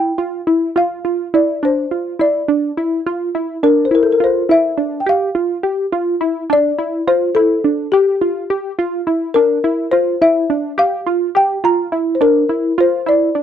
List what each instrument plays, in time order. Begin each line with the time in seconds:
Already playing: synth arpeggio sound E4, marimba G5
0.18 synth arpeggio sound F4
0.47 synth arpeggio sound E4
0.76 synth arpeggio sound F4, marimba F5
1.05 synth arpeggio sound F4
1.34 synth arpeggio sound E4, marimba D5
1.63 synth arpeggio sound D4, marimba C5
1.91 synth arpeggio sound F4
2.19 synth arpeggio sound E4, marimba D5
2.48 synth arpeggio sound D4
2.77 synth arpeggio sound E4
3.06 synth arpeggio sound F4
3.35 synth arpeggio sound E4
3.63 synth arpeggio sound D4, marimba A#4
3.85 marimba C5
3.91 synth arpeggio sound E4, marimba A#4
4.03 marimba A4
4.12 marimba A#4
4.20 synth arpeggio sound F4, marimba C5
4.49 synth arpeggio sound E4, marimba E5
4.77 synth arpeggio sound D4
5.00 marimba G5
5.06 synth arpeggio sound G4, marimba F5
5.35 synth arpeggio sound F4
5.63 synth arpeggio sound G4
5.92 synth arpeggio sound F4
6.21 synth arpeggio sound E4
6.50 synth arpeggio sound D4, marimba D5
6.78 synth arpeggio sound E4
7.07 synth arpeggio sound F4, marimba C5
7.35 synth arpeggio sound E4, marimba A4
7.64 synth arpeggio sound D4
7.92 marimba G4, synth arpeggio sound G4
8.21 synth arpeggio sound F4
8.50 synth arpeggio sound G4
8.79 synth arpeggio sound F4
9.07 synth arpeggio sound E4
9.34 synth arpeggio sound D4, marimba A#4
9.64 synth arpeggio sound E4
9.91 synth arpeggio sound F4, marimba C5
10.21 synth arpeggio sound E4, marimba E5
10.50 synth arpeggio sound D4
10.78 synth arpeggio sound G4, marimba F5
11.07 synth arpeggio sound F4
11.35 synth arpeggio sound G4, marimba G5
11.64 synth arpeggio sound F4, marimba A#5
11.92 synth arpeggio sound E4
12.15 marimba C5
12.21 synth arpeggio sound D4, marimba A#4
12.49 synth arpeggio sound E4
12.78 synth arpeggio sound F4, marimba C5
13.06 synth arpeggio sound E4, marimba D5
13.35 synth arpeggio sound D4